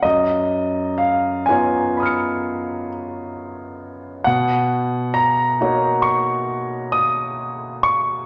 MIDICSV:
0, 0, Header, 1, 2, 480
1, 0, Start_track
1, 0, Tempo, 952381
1, 23, Time_signature, 9, 3, 24, 8
1, 1223, Tempo, 918836
1, 2183, Tempo, 900901
1, 4310, End_track
2, 0, Start_track
2, 0, Title_t, "Grand piano"
2, 0, Program_c, 0, 0
2, 0, Control_c, 0, 64, 127
2, 13, Note_on_c, 0, 75, 61
2, 23, Note_on_c, 0, 42, 41
2, 31, Control_c, 0, 64, 0
2, 116, Control_c, 0, 64, 127
2, 493, Note_on_c, 0, 77, 54
2, 499, Note_off_c, 0, 75, 0
2, 725, Note_off_c, 0, 42, 0
2, 735, Note_on_c, 0, 80, 61
2, 739, Note_off_c, 0, 77, 0
2, 750, Note_on_c, 0, 59, 29
2, 750, Note_on_c, 0, 63, 26
2, 751, Note_on_c, 0, 65, 32
2, 757, Note_on_c, 0, 73, 32
2, 993, Note_on_c, 0, 83, 28
2, 1007, Note_on_c, 0, 87, 30
2, 1021, Note_on_c, 0, 89, 29
2, 1036, Note_on_c, 0, 97, 27
2, 1455, Note_off_c, 0, 80, 0
2, 2165, Note_off_c, 0, 59, 0
2, 2165, Note_off_c, 0, 63, 0
2, 2166, Note_off_c, 0, 65, 0
2, 2167, Note_off_c, 0, 83, 0
2, 2169, Note_off_c, 0, 73, 0
2, 2172, Note_on_c, 0, 78, 71
2, 2174, Note_off_c, 0, 87, 0
2, 2181, Note_off_c, 0, 89, 0
2, 2183, Note_on_c, 0, 47, 47
2, 2189, Note_off_c, 0, 97, 0
2, 2191, Control_c, 0, 64, 0
2, 2286, Control_c, 0, 64, 127
2, 2649, Note_on_c, 0, 82, 64
2, 2656, Note_off_c, 0, 78, 0
2, 2876, Note_off_c, 0, 47, 0
2, 2897, Note_on_c, 0, 58, 30
2, 2899, Note_on_c, 0, 63, 32
2, 2903, Note_on_c, 0, 66, 35
2, 2904, Note_on_c, 0, 73, 36
2, 3119, Note_on_c, 0, 85, 67
2, 3128, Note_off_c, 0, 82, 0
2, 3599, Note_on_c, 0, 87, 69
2, 3609, Note_off_c, 0, 85, 0
2, 4084, Note_on_c, 0, 85, 71
2, 4091, Note_off_c, 0, 87, 0
2, 4310, Note_off_c, 0, 58, 0
2, 4310, Note_off_c, 0, 63, 0
2, 4310, Note_off_c, 0, 66, 0
2, 4310, Note_off_c, 0, 73, 0
2, 4310, Note_off_c, 0, 85, 0
2, 4310, End_track
0, 0, End_of_file